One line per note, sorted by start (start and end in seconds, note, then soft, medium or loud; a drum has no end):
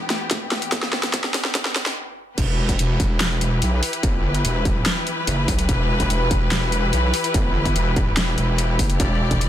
0.00 1.92 E2 medium
0.00 1.92 E3 medium
0.00 1.92 B3 medium
0.00 1.92 G4 medium
0.10 snare medium
0.10 closed hi-hat medium
0.31 kick loud
0.31 snare medium
0.31 closed hi-hat medium
0.52 snare medium
0.62 closed hi-hat medium
0.72 kick loud
0.72 snare medium
0.72 closed hi-hat medium
0.83 snare medium
0.93 snare medium
1.03 snare medium
1.03 closed hi-hat soft
1.14 kick loud
1.14 snare medium
1.14 closed hi-hat medium
1.24 snare medium
1.34 snare loud
1.34 open hi-hat medium
1.45 snare medium
1.55 kick loud
1.55 snare loud
1.55 closed hi-hat medium
1.65 snare medium
1.76 snare loud
1.76 closed hi-hat medium
1.86 snare medium
2.38 2.77 E1 medium
2.38 9.49 E3 medium
2.38 9.49 E4 medium
2.38 9.49 G4 medium
2.38 8.98 B4 medium
2.38 kick loud
2.38 closed hi-hat medium
2.38 crash loud
2.69 kick medium
2.69 closed hi-hat medium
2.79 3.60 E1 loud
2.79 closed hi-hat medium
3.00 kick loud
3.00 closed hi-hat medium
3.21 snare loud
3.21 clap loud
3.21 closed hi-hat medium
3.41 closed hi-hat medium
3.62 3.81 B1 loud
3.62 closed hi-hat medium
3.83 open hi-hat medium
3.93 closed hi-hat medium
4.03 4.43 G1 medium
4.03 kick loud
4.03 closed hi-hat medium
4.34 closed hi-hat medium
4.45 4.84 E1 loud
4.45 closed hi-hat medium
4.65 kick loud
4.65 closed hi-hat medium
4.86 snare loud
4.86 clap medium
4.86 closed hi-hat medium
5.07 closed hi-hat medium
5.27 5.46 F#1 loud
5.27 closed hi-hat medium
5.48 5.67 B1 loud
5.48 kick medium
5.48 open hi-hat medium
5.59 closed hi-hat medium
5.69 6.09 E1 medium
5.69 kick loud
5.69 closed hi-hat medium
6.00 kick medium
6.00 closed hi-hat medium
6.10 6.91 E1 loud
6.10 closed hi-hat medium
6.31 kick loud
6.31 closed hi-hat medium
6.52 snare loud
6.52 clap medium
6.52 closed hi-hat medium
6.72 closed hi-hat medium
6.93 7.12 B1 loud
6.93 closed hi-hat medium
7.14 open hi-hat medium
7.24 closed hi-hat medium
7.34 7.74 G1 medium
7.34 kick loud
7.34 closed hi-hat medium
7.65 kick medium
7.65 closed hi-hat medium
7.76 8.15 E1 loud
7.76 closed hi-hat medium
7.96 kick loud
7.96 closed hi-hat soft
8.17 8.36 E1 loud
8.17 snare loud
8.17 clap medium
8.17 closed hi-hat medium
8.38 8.77 E1 medium
8.38 closed hi-hat medium
8.58 closed hi-hat medium
8.79 8.98 F#1 loud
8.79 kick medium
8.79 open hi-hat medium
8.90 closed hi-hat medium
9.00 9.40 E1 medium
9.00 9.49 D5 medium
9.00 kick loud
9.00 closed hi-hat medium
9.31 kick medium
9.31 closed hi-hat medium
9.41 9.49 E1 loud
9.41 closed hi-hat medium